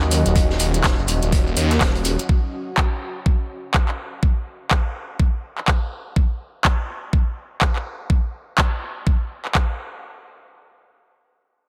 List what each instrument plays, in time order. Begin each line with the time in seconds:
Already playing: detuned saw bass D#2, analog synth pad F#3 D#4 D#5, ambient pad C#4 F#4 D#5
0.01 clap, shekere
0.11 closed hi-hat, open hi-hat, shekere
0.26 detuned saw bass D#1, closed hi-hat, shekere
0.36 kick, closed hi-hat, shekere
0.50 snare, shekere
0.59 detuned saw bass D#1, closed hi-hat, open hi-hat, shekere
0.74 closed hi-hat, shekere
0.84 kick, snare, clap, closed hi-hat, shekere
0.98 detuned saw bass F#1, shekere
1.08 detuned saw bass D#1, closed hi-hat, open hi-hat, shekere
1.22 detuned saw bass D#1, closed hi-hat, shekere
1.32 kick, closed hi-hat, shekere
1.47 shekere
1.56 detuned saw bass D#2, closed hi-hat, open hi-hat, shekere
1.71 snare, clap, closed hi-hat, shekere
1.81 detuned saw bass D#1, kick, snare, clap, closed hi-hat, shekere
1.95 closed hi-hat, shekere
2.05 closed hi-hat, open hi-hat, shekere
2.19 closed hi-hat, shekere
2.29 kick
2.77 kick, clap
3.26 kick
3.74 kick, clap
3.89 clap
4.23 kick
4.71 kick, clap
5.20 kick
5.58 clap
5.68 kick, clap
6.16 kick
6.65 kick, clap
7.13 kick
7.61 kick, clap
7.76 clap
8.10 kick
8.58 kick, clap
9.07 kick
9.45 clap
9.55 kick, clap